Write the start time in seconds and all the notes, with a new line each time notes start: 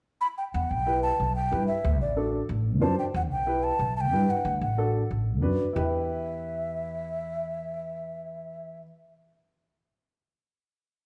0.21 B5
0.38 G5
0.54 E2 F#5
0.70 B1 G5
0.86 E4 G4 B4
1.03 A5
1.20 B1
1.35 G5
1.51 G2 E4 G4 B4
1.68 E5
1.84 D2
2.01 A1 D5
2.16 D4 F#4 A4
2.49 A1
2.81 F#2 D4 F#4 C5 A5
2.99 G5
3.14 E2 F#5
3.31 B1 G5
3.46 E4 G4 B4
3.63 A5
3.79 B1
3.97 A5
4.01 G5
4.12 G2 E4 G4 B4
4.30 F#5
4.45 D2
4.61 A1 F#5
4.77 D4 F#4 A4
5.11 A1
5.42 F#2 D4 F#4 B4
5.73 E2 E4 G4 E5
5.77 B4